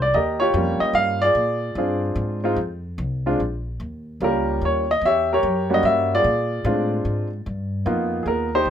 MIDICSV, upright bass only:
0, 0, Header, 1, 3, 480
1, 0, Start_track
1, 0, Tempo, 405954
1, 175, Time_signature, 3, 2, 24, 8
1, 10287, End_track
2, 0, Start_track
2, 0, Title_t, "Upright bass"
2, 0, Program_c, 0, 32
2, 0, Note_on_c, 0, 36, 88
2, 149, Note_off_c, 0, 36, 0
2, 163, Note_on_c, 0, 39, 85
2, 628, Note_off_c, 0, 39, 0
2, 635, Note_on_c, 0, 41, 93
2, 934, Note_off_c, 0, 41, 0
2, 1104, Note_on_c, 0, 43, 84
2, 1586, Note_off_c, 0, 43, 0
2, 1594, Note_on_c, 0, 46, 83
2, 2065, Note_off_c, 0, 46, 0
2, 2073, Note_on_c, 0, 43, 86
2, 2541, Note_off_c, 0, 43, 0
2, 2548, Note_on_c, 0, 44, 88
2, 3024, Note_off_c, 0, 44, 0
2, 3031, Note_on_c, 0, 41, 81
2, 3510, Note_off_c, 0, 41, 0
2, 3523, Note_on_c, 0, 36, 95
2, 3996, Note_off_c, 0, 36, 0
2, 4019, Note_on_c, 0, 34, 80
2, 4484, Note_off_c, 0, 34, 0
2, 4490, Note_on_c, 0, 39, 82
2, 4960, Note_off_c, 0, 39, 0
2, 4972, Note_on_c, 0, 37, 86
2, 5441, Note_off_c, 0, 37, 0
2, 5456, Note_on_c, 0, 39, 84
2, 5923, Note_off_c, 0, 39, 0
2, 5929, Note_on_c, 0, 40, 85
2, 6399, Note_off_c, 0, 40, 0
2, 6420, Note_on_c, 0, 42, 89
2, 6885, Note_off_c, 0, 42, 0
2, 6892, Note_on_c, 0, 43, 86
2, 7360, Note_off_c, 0, 43, 0
2, 7381, Note_on_c, 0, 46, 83
2, 7844, Note_off_c, 0, 46, 0
2, 7857, Note_on_c, 0, 45, 96
2, 8322, Note_off_c, 0, 45, 0
2, 8334, Note_on_c, 0, 44, 81
2, 8800, Note_off_c, 0, 44, 0
2, 8823, Note_on_c, 0, 43, 87
2, 9285, Note_off_c, 0, 43, 0
2, 9291, Note_on_c, 0, 41, 86
2, 9756, Note_off_c, 0, 41, 0
2, 9763, Note_on_c, 0, 39, 83
2, 10225, Note_off_c, 0, 39, 0
2, 10232, Note_on_c, 0, 36, 82
2, 10287, Note_off_c, 0, 36, 0
2, 10287, End_track
3, 0, Start_track
3, 0, Title_t, "Muted upright bass strokes"
3, 955, Note_on_c, 9, 29, 37
3, 1073, Note_off_c, 9, 29, 0
3, 10287, End_track
0, 0, End_of_file